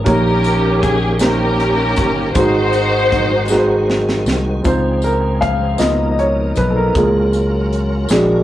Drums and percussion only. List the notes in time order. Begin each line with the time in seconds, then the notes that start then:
0.06 kick, closed hi-hat, tambourine
0.44 closed hi-hat, tambourine
0.83 kick, closed hi-hat
1.19 snare, closed hi-hat, tambourine
1.60 closed hi-hat
1.96 kick, closed hi-hat, tambourine
2.35 kick, closed hi-hat, tambourine
2.73 closed hi-hat, tambourine
3.12 kick, closed hi-hat
3.48 snare, tambourine
3.90 snare
4.09 snare
4.26 snare, tambourine
4.64 kick, closed hi-hat, tambourine
5.02 closed hi-hat, tambourine
5.42 kick, closed hi-hat
5.78 snare, closed hi-hat, tambourine
6.19 closed hi-hat
6.56 kick, closed hi-hat, tambourine
6.95 kick, closed hi-hat, tambourine
7.33 closed hi-hat, tambourine
7.73 closed hi-hat
8.09 snare, closed hi-hat, tambourine